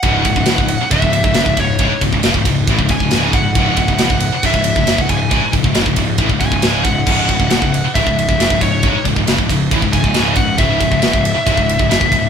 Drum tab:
CC |----------------|----------------|----------------|----------------|
RD |x-x-x-x-x-x-x-x-|x-x-x-x-x-x-x-x-|x-x-x-x-x-x-x-x-|x-x-x-x-x-x-x-x-|
SD |----o-------o---|----o-------o---|----o-------o---|----o-------o---|
BD |o-oo-o--oo-o-oo-|o-oo-oo-oooo--o-|o-oo-o--oo-o-oo-|o-oo-oo-oooo--o-|

CC |x---------------|----------------|----------------|
RD |--x-x-x-x-x-x-x-|x-x-x-x-x-x-x-x-|x-x-x-x-x-x-x-x-|
SD |----o-------o---|----o-------o---|----o-------o---|
BD |o-oo-o--oo-o-oo-|o-oo-oo-oooo--o-|o-oo-o--oo-o-oo-|